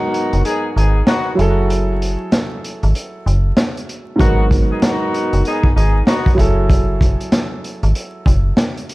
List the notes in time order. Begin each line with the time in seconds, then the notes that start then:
Already playing: G#2 F#3 B3 D#4 F#4 A#4
0.14 closed hi-hat
0.33 F#1, closed hi-hat
0.44 B3 D#4 G#4, closed hi-hat
0.76 G#1 B3 D#4 G#4, closed hi-hat
1.07 B3 D#4 F#4, snare, closed hi-hat
1.35 F#1 F#3 E4 G#4
1.39 A4, closed hi-hat
1.70 closed hi-hat
2.02 closed hi-hat
2.32 snare, closed hi-hat
2.64 closed hi-hat
2.83 G#1, closed hi-hat
2.95 closed hi-hat
3.26 F#1, closed hi-hat
3.57 snare, closed hi-hat
3.77 closed hi-hat
3.89 closed hi-hat
4.16 G#2 F#3 B3 D#4 F#4, kick
4.20 G#1 B3 A#4, closed hi-hat
4.51 kick, closed hi-hat
4.71 B3 D#4 G#4
4.82 B3 D#4 F#4, snare, closed hi-hat
5.14 closed hi-hat
5.33 F#1, closed hi-hat
5.45 B3 D#4 G#4, closed hi-hat
5.64 kick
5.76 G#1 B3 D#4 G#4, closed hi-hat
6.07 B3 D#4 F#4, snare, closed hi-hat
6.26 kick, closed hi-hat
6.35 F#1 F#3 E4 G#4, kick
6.39 A4, closed hi-hat
6.69 kick, closed hi-hat
7.01 kick, closed hi-hat
7.21 closed hi-hat
7.32 snare, closed hi-hat
7.64 closed hi-hat
7.83 G#1, closed hi-hat
7.95 closed hi-hat
8.26 F#1, kick, closed hi-hat
8.57 snare, closed hi-hat
8.77 closed hi-hat
8.89 closed hi-hat